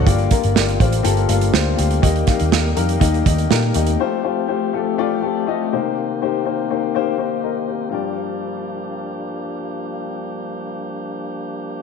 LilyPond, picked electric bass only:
\new Staff \with { instrumentName = "Picked electric bass" } { \clef bass \time 4/4 \key g \minor \tempo 4 = 122 g,,8 r16 g,,16 g,,8 a,,8 g,,8 g,,8 d,8 d,8 | ees,8 r16 ees,16 ees,8 f,8 ees,8 ees,8 bes,8 ees,8 | r1 | r1 |
r1 | r1 | }